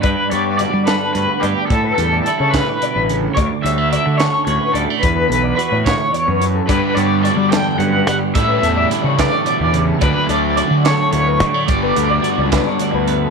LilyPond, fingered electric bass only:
\new Staff \with { instrumentName = "Fingered electric bass" } { \clef bass \time 6/8 \key g \lydian \tempo 4. = 72 g,16 r16 g,8. g8 r16 g,16 r16 g,16 r16 | a,8 e,8 r16 cis8 r8 a,,8. | d,16 r16 d,8. d8 r16 d,16 r16 d,16 r16 | e,8 b,,8 r16 a,8 r8 fis,8. |
g,16 r16 g,8. g8 r16 g,8 g16 r16 | a,8 e,8 r16 cis8 r8 e,8. | d,16 r16 d,8. d8 r16 d,8 d16 r16 | g,,8 d,8 r16 cis,8 r8 d,8. | }